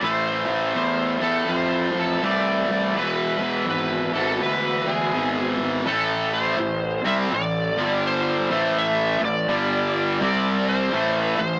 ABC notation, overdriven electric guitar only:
X:1
M:4/4
L:1/8
Q:"Swing" 1/4=83
K:Am
V:1 name="Overdriven electric guitar" clef=bass
[A,,E,A,]3 [A,,E,A,]3 [A,,E,A,]2 | [E,,B,,E,]3 [E,,B,,E,]3 [E,,B,,E,]2 | [A,,E,A,]2 [A,,E,] [C,G,C] [A,,E,] [G,,D,G,]2 [A,,E,A,]- | [A,,E,A,] [A,,E,] [G,,D,G,]2 [C,G,C]2 [A,,E,A,] [A,,E,] |]